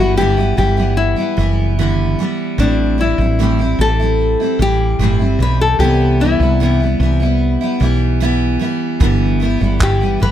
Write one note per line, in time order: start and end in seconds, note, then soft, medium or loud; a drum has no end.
0.00 0.54 G1 medium
0.00 0.17 E3 soft
0.00 0.17 G3 soft
0.00 0.18 B3 soft
0.00 0.17 E4 soft
0.00 0.17 F#4 medium
0.17 0.37 G2 medium
0.17 0.38 D3 medium
0.17 0.38 E3 medium
0.17 0.38 G3 medium
0.17 0.37 B3 medium
0.17 0.36 E4 medium
0.17 0.55 G4 medium
0.37 0.56 E3 soft
0.37 0.56 G3 soft
0.37 0.58 B3 soft
0.37 0.57 E4 soft
0.57 1.14 G1 medium
0.57 0.77 E3 soft
0.57 0.78 G3 soft
0.57 0.77 B3 medium
0.57 0.76 E4 medium
0.57 0.95 G4 medium
0.77 1.19 E3 soft
0.77 1.17 G3 soft
0.77 1.16 B3 soft
0.77 1.15 E4 medium
0.97 1.74 E4 medium
1.16 1.36 E3 soft
1.16 1.37 G3 soft
1.16 1.38 B3 soft
1.16 1.37 E4 soft
1.37 2.14 F#1 medium
1.37 1.77 E3 medium
1.37 1.78 G3 medium
1.37 1.79 B3 medium
1.37 1.79 E4 medium
1.79 2.18 D3 medium
1.79 2.18 E3 medium
1.79 2.19 G3 medium
1.79 2.19 B3 medium
1.79 2.19 E4 medium
2.19 2.58 E3 medium
2.19 2.58 G3 medium
2.19 2.60 B3 medium
2.19 2.60 E4 medium
2.58 3.14 A1 medium
2.58 2.98 A2 medium
2.58 2.97 E3 medium
2.58 2.98 G3 medium
2.58 2.99 C4 medium
2.58 3.00 D4 medium
2.58 3.00 E4 medium
2.98 3.18 E3 soft
2.98 3.19 G3 medium
2.98 3.19 C4 medium
2.98 3.82 E4 medium
2.98 3.17 E4 medium
3.18 3.74 A1 medium
3.18 3.39 G3 soft
3.18 3.39 C4 soft
3.18 3.38 E4 medium
3.39 3.59 A2 medium
3.39 3.59 E3 medium
3.39 3.59 G3 medium
3.39 3.60 C4 medium
3.39 3.58 E4 medium
3.59 3.79 G3 soft
3.59 3.80 C4 soft
3.59 3.79 E4 soft
3.79 4.35 A1 medium
3.79 3.99 E3 medium
3.79 3.99 G3 soft
3.79 4.00 C4 medium
3.79 3.98 E4 medium
3.79 4.62 A4 medium
3.99 4.41 G3 soft
3.99 4.40 C4 soft
3.99 4.39 E4 soft
4.40 4.59 G3 soft
4.40 4.60 C4 soft
4.40 4.59 E4 soft
4.59 4.96 A1 medium
4.59 4.99 E3 medium
4.59 5.00 G3 medium
4.59 5.00 C4 medium
4.59 5.00 E4 medium
4.59 5.42 G4 medium
4.99 5.36 G1 medium
4.99 5.19 A2 medium
4.99 5.20 E3 medium
4.99 5.20 G3 medium
4.99 5.20 C4 medium
4.99 5.18 E4 medium
5.19 5.40 G3 soft
5.19 5.40 C4 soft
5.19 5.39 E4 soft
5.39 5.76 B1 medium
5.39 5.79 E3 medium
5.39 5.80 G3 medium
5.39 5.81 C4 medium
5.39 5.61 B4 medium
5.43 5.81 E4 medium
5.61 5.79 A4 medium
5.79 6.35 C2 medium
5.79 6.20 C3 medium
5.79 6.19 E3 medium
5.79 6.20 G3 medium
5.79 6.20 B3 medium
5.79 6.21 E4 medium
5.79 6.21 G4 medium
6.20 6.40 E3 medium
6.20 6.41 G3 medium
6.20 6.41 B3 medium
6.20 7.77 E4 medium
6.20 6.39 E4 soft
6.40 6.96 C2 medium
6.40 6.60 G3 soft
6.40 6.61 B3 soft
6.40 6.60 E4 soft
6.60 6.80 C3 medium
6.60 6.80 E3 medium
6.60 6.81 G3 medium
6.60 6.81 B3 medium
6.60 6.79 E4 medium
6.80 7.00 G3 soft
6.80 7.01 B3 soft
6.80 7.00 E4 soft
7.00 7.56 C2 medium
7.00 7.20 E3 soft
7.00 7.21 G3 soft
7.00 7.21 B3 medium
7.00 7.19 E4 medium
7.20 7.62 G3 soft
7.20 7.61 B3 soft
7.20 7.60 E4 medium
7.61 7.80 G3 soft
7.61 7.81 B3 soft
7.61 7.80 E4 medium
7.80 8.57 B1 medium
7.80 8.19 E3 medium
7.80 8.20 G3 medium
7.80 8.21 B3 medium
7.80 8.21 E4 medium
8.20 8.58 E3 medium
8.20 8.60 G3 medium
8.20 8.60 B3 medium
8.20 8.61 E4 medium
8.59 9.00 E3 medium
8.59 9.00 G3 medium
8.59 9.01 B3 medium
8.59 9.01 E4 medium
9.00 9.57 G1 medium
9.00 9.40 G2 medium
9.00 9.41 D3 medium
9.00 9.39 E3 medium
9.00 9.40 G3 medium
9.00 9.41 B3 medium
9.00 9.42 E4 medium
9.00 kick loud
9.40 9.60 E3 medium
9.40 9.60 G3 medium
9.40 9.60 B3 medium
9.40 9.59 E4 medium
9.60 10.17 G1 medium
9.60 9.79 E3 soft
9.60 9.79 G3 soft
9.60 9.80 B3 soft
9.60 9.80 E4 soft
9.79 10.00 G2 medium
9.79 10.00 D3 medium
9.79 10.00 E3 medium
9.79 10.01 G3 medium
9.79 10.01 B3 medium
9.79 9.99 E4 medium
9.79 10.19 G4 medium
9.79 kick medium
9.79 clap medium
10.01 10.19 E3 soft
10.01 10.20 G3 soft
10.01 10.21 B3 soft
10.01 10.21 E4 medium
10.20 10.31 G1 medium
10.20 10.31 E3 soft
10.20 10.31 G3 soft
10.20 10.31 B3 medium
10.20 10.31 E4 medium
10.20 10.31 B4 medium